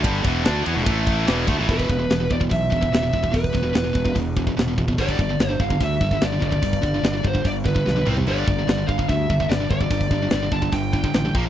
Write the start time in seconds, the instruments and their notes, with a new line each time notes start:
0.03 fingered electric bass G1, distorted electric guitar G2 D3 G3, kick, ride
0.24 fingered electric bass E1, distorted electric guitar E2 B2 E3, kick, ride
0.45 fingered electric bass D2, distorted electric guitar D3 A3 D4, snare, ride
0.65 fingered electric bass E2, distorted electric guitar E3 B3, ride
0.74 fingered electric bass E1, distorted electric guitar E2 B2
0.84 fingered electric bass A1, distorted electric guitar A2 E3 A3, kick, ride
1.07 kick, ride
1.26 fingered electric bass E1, distorted electric guitar E2 B2 E3, snare, ride
1.47 fingered electric bass D2, distorted electric guitar D3 A3, kick, ride
1.57 fingered electric bass A1, distorted electric guitar A2 E3
1.67 fingered electric bass E1, distorted electric guitar E2 B2 E3, lead electric guitar B4, kick, open hi-hat
1.79 kick
1.89 fingered electric bass E1, distorted electric guitar E2 B2, kick
1.99 distorted electric guitar E2 B2
2.10 fingered electric bass E1, distorted electric guitar E2 B2, snare, open hi-hat
2.20 distorted electric guitar E2 B2
2.30 fingered electric bass E1, distorted electric guitar E2 B2, lead electric guitar D5, kick
2.40 distorted electric guitar E2 B2, kick
2.49 fingered electric bass B1, distorted electric guitar E2 B2, lead electric guitar E5, kick, open hi-hat
2.70 fingered electric bass E1, distorted electric guitar E2 B2, kick
2.81 distorted electric guitar E2 B2, kick
2.93 fingered electric bass E1, distorted electric guitar E2 B2, lead electric guitar E5, snare, open hi-hat
3.02 distorted electric guitar E2 B2
3.13 fingered electric bass E1, distorted electric guitar E2 B2, kick
3.22 distorted electric guitar E2 B2, kick
3.31 fingered electric bass E1, distorted electric guitar E2 B2, lead electric guitar B4, kick, open hi-hat
3.44 kick
3.53 fingered electric bass E1, distorted electric guitar E2 B2, kick
3.63 distorted electric guitar E2 B2
3.73 fingered electric bass E1, distorted electric guitar E2 B2, snare, open hi-hat
3.84 distorted electric guitar E2 B2
3.93 fingered electric bass E1, distorted electric guitar E2 B2, kick
4.05 distorted electric guitar E2 B2, kick
4.15 fingered electric bass E1, distorted electric guitar E2 B2, kick, open hi-hat
4.37 distorted electric guitar E2 B2, kick
4.47 distorted electric guitar E2 B2, kick
4.57 fingered electric bass E1, distorted electric guitar E2 B2, snare, open hi-hat
4.68 distorted electric guitar E2 B2
4.78 fingered electric bass F1, distorted electric guitar E2 B2, kick
4.88 distorted electric guitar E2 B2, kick
4.98 fingered electric bass G1, distorted electric guitar G2 D3 G3, lead electric guitar D5, kick, open hi-hat
5.09 kick
5.19 fingered electric bass G1, distorted electric guitar G2 D3, kick
5.29 distorted electric guitar G2 D3
5.39 fingered electric bass G1, distorted electric guitar G2 D3, snare, open hi-hat
5.48 distorted electric guitar G2 D3, lead electric guitar C5
5.59 fingered electric bass G1, distorted electric guitar G2 D3, lead electric guitar F5, kick
5.70 distorted electric guitar G2 D3, kick
5.80 fingered electric bass D2, distorted electric guitar G2 D3, lead electric guitar E5, kick, open hi-hat
6.01 fingered electric bass G1, distorted electric guitar G2 D3, kick
6.11 distorted electric guitar G2 D3, kick
6.21 fingered electric bass G1, distorted electric guitar G2 D3, lead electric guitar D5, snare, open hi-hat
6.33 distorted electric guitar G2 D3
6.41 fingered electric bass G1, distorted electric guitar G2 D3, lead electric guitar D5, kick
6.51 distorted electric guitar G2 D3, kick
6.62 fingered electric bass G1, distorted electric guitar G2 D3, kick, open hi-hat
6.73 kick
6.82 fingered electric bass G1, distorted electric guitar G2 D3, kick
6.94 distorted electric guitar G2 D3
7.03 fingered electric bass G1, distorted electric guitar G2 D3, snare, open hi-hat
7.13 distorted electric guitar G2 D3
7.23 fingered electric bass G1, distorted electric guitar G2 D3, kick
7.27 lead electric guitar C5
7.33 distorted electric guitar G2 D3, kick
7.44 fingered electric bass G1, distorted electric guitar G2 D3, lead electric guitar D5, kick, open hi-hat
7.64 distorted electric guitar G2 D3, lead electric guitar B4, kick
7.75 distorted electric guitar G2 D3, kick
7.86 fingered electric bass B1, distorted electric guitar G2 D3, snare
7.96 distorted electric guitar G2 D3, high tom
8.05 fingered electric bass C2, distorted electric guitar C3 G3 C4, mid tom
8.16 distorted electric guitar C3 G3, floor tom
8.27 fingered electric bass G1, distorted electric guitar G2 D3 G3, lead electric guitar D5, open hi-hat
8.47 fingered electric bass G1, distorted electric guitar G2 D3, kick
8.59 distorted electric guitar G2 D3
8.67 fingered electric bass G1, distorted electric guitar G2 D3, snare, open hi-hat
8.78 distorted electric guitar G2 D3
8.88 fingered electric bass G1, distorted electric guitar G2 D3, lead electric guitar F5, kick
8.98 distorted electric guitar G2 D3, kick
9.09 fingered electric bass D2, distorted electric guitar G2 D3, lead electric guitar E5, kick, open hi-hat
9.30 fingered electric bass G1, distorted electric guitar G2 D3, kick
9.40 distorted electric guitar G2 D3, kick
9.49 fingered electric bass G1, distorted electric guitar G2 D3, lead electric guitar D5, snare, open hi-hat
9.60 distorted electric guitar G2 D3
9.70 fingered electric bass G1, distorted electric guitar G2 D3, lead electric guitar D5, kick
9.80 distorted electric guitar G2 D3, kick
9.91 fingered electric bass G1, distorted electric guitar G2 D3, kick, open hi-hat
10.01 kick
10.10 fingered electric bass G1, distorted electric guitar G2 D3, kick
10.22 distorted electric guitar G2 D3
10.30 fingered electric bass G1, distorted electric guitar G2 D3, snare, open hi-hat
10.42 distorted electric guitar G2 D3
10.52 fingered electric bass G1, distorted electric guitar G2 D3, lead electric guitar A5, kick
10.62 distorted electric guitar G2 D3, kick
10.72 fingered electric bass G1, distorted electric guitar G2 D3, lead electric guitar G5, kick, open hi-hat
10.93 distorted electric guitar G2 D3, lead electric guitar G5, kick
11.04 distorted electric guitar G2 D3, kick
11.14 fingered electric bass A1, distorted electric guitar G2 D3, snare, open hi-hat
11.25 distorted electric guitar G2 D3
11.34 fingered electric bass A#1, distorted electric guitar A#2 F3 A#3, kick
11.45 distorted electric guitar A#2 F3